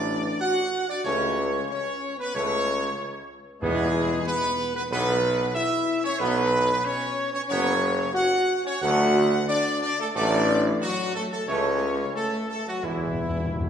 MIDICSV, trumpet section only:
0, 0, Header, 1, 2, 480
1, 0, Start_track
1, 0, Tempo, 644468
1, 785, Time_signature, 4, 2, 24, 8
1, 5585, Tempo, 664452
1, 8945, Tempo, 685714
1, 10027, End_track
2, 0, Start_track
2, 0, Title_t, "Trumpet section"
2, 0, Program_c, 0, 61
2, 0, Note_on_c, 0, 74, 123
2, 273, Note_off_c, 0, 74, 0
2, 301, Note_on_c, 0, 78, 127
2, 638, Note_off_c, 0, 78, 0
2, 665, Note_on_c, 0, 74, 115
2, 777, Note_off_c, 0, 74, 0
2, 781, Note_on_c, 0, 73, 113
2, 1236, Note_off_c, 0, 73, 0
2, 1269, Note_on_c, 0, 73, 112
2, 1604, Note_off_c, 0, 73, 0
2, 1637, Note_on_c, 0, 71, 127
2, 1752, Note_on_c, 0, 73, 127
2, 1753, Note_off_c, 0, 71, 0
2, 2432, Note_off_c, 0, 73, 0
2, 2699, Note_on_c, 0, 68, 127
2, 3148, Note_off_c, 0, 68, 0
2, 3178, Note_on_c, 0, 71, 127
2, 3513, Note_off_c, 0, 71, 0
2, 3544, Note_on_c, 0, 71, 127
2, 3596, Note_off_c, 0, 71, 0
2, 3658, Note_on_c, 0, 71, 127
2, 4108, Note_off_c, 0, 71, 0
2, 4131, Note_on_c, 0, 76, 127
2, 4469, Note_off_c, 0, 76, 0
2, 4501, Note_on_c, 0, 73, 123
2, 4611, Note_off_c, 0, 73, 0
2, 4615, Note_on_c, 0, 71, 127
2, 5099, Note_off_c, 0, 71, 0
2, 5099, Note_on_c, 0, 73, 127
2, 5455, Note_off_c, 0, 73, 0
2, 5464, Note_on_c, 0, 73, 127
2, 5519, Note_off_c, 0, 73, 0
2, 5579, Note_on_c, 0, 73, 127
2, 6028, Note_off_c, 0, 73, 0
2, 6053, Note_on_c, 0, 78, 127
2, 6394, Note_off_c, 0, 78, 0
2, 6427, Note_on_c, 0, 73, 122
2, 6538, Note_off_c, 0, 73, 0
2, 6538, Note_on_c, 0, 78, 127
2, 6989, Note_off_c, 0, 78, 0
2, 7016, Note_on_c, 0, 74, 127
2, 7244, Note_off_c, 0, 74, 0
2, 7264, Note_on_c, 0, 74, 123
2, 7378, Note_off_c, 0, 74, 0
2, 7393, Note_on_c, 0, 69, 120
2, 7446, Note_off_c, 0, 69, 0
2, 7506, Note_on_c, 0, 74, 127
2, 7861, Note_off_c, 0, 74, 0
2, 7983, Note_on_c, 0, 66, 127
2, 8205, Note_off_c, 0, 66, 0
2, 8223, Note_on_c, 0, 69, 123
2, 8277, Note_off_c, 0, 69, 0
2, 8350, Note_on_c, 0, 69, 110
2, 8458, Note_off_c, 0, 69, 0
2, 8461, Note_on_c, 0, 73, 105
2, 8915, Note_off_c, 0, 73, 0
2, 8944, Note_on_c, 0, 69, 111
2, 9166, Note_off_c, 0, 69, 0
2, 9187, Note_on_c, 0, 69, 112
2, 9297, Note_off_c, 0, 69, 0
2, 9314, Note_on_c, 0, 66, 106
2, 9421, Note_off_c, 0, 66, 0
2, 9428, Note_on_c, 0, 64, 103
2, 10027, Note_off_c, 0, 64, 0
2, 10027, End_track
0, 0, End_of_file